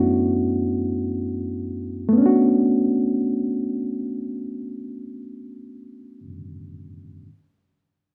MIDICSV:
0, 0, Header, 1, 2, 480
1, 0, Start_track
1, 0, Key_signature, 2, "minor"
1, 0, Tempo, 500000
1, 7823, End_track
2, 0, Start_track
2, 0, Title_t, "Reed electric piano"
2, 0, Program_c, 0, 4
2, 0, Control_c, 0, 64, 127
2, 0, Note_on_c, 0, 42, 65
2, 0, Note_on_c, 0, 57, 51
2, 0, Note_on_c, 0, 59, 55
2, 0, Note_on_c, 0, 61, 46
2, 0, Note_on_c, 0, 62, 53
2, 0, Note_on_c, 0, 64, 56
2, 0, Note_on_c, 0, 66, 71
2, 1992, Note_off_c, 0, 57, 0
2, 2003, Note_on_c, 0, 57, 67
2, 2023, Note_off_c, 0, 42, 0
2, 2033, Note_off_c, 0, 59, 0
2, 2045, Note_on_c, 0, 59, 58
2, 2047, Note_off_c, 0, 62, 0
2, 2055, Note_off_c, 0, 64, 0
2, 2063, Note_off_c, 0, 66, 0
2, 2090, Note_off_c, 0, 61, 0
2, 2090, Note_on_c, 0, 61, 60
2, 2093, Control_c, 0, 64, 0
2, 2129, Note_on_c, 0, 62, 58
2, 2167, Note_on_c, 0, 66, 68
2, 2249, Control_c, 0, 64, 127
2, 5948, Note_off_c, 0, 57, 0
2, 5969, Note_off_c, 0, 59, 0
2, 5991, Note_off_c, 0, 61, 0
2, 6011, Note_off_c, 0, 62, 0
2, 6030, Note_off_c, 0, 66, 0
2, 6998, Control_c, 0, 64, 0
2, 7823, End_track
0, 0, End_of_file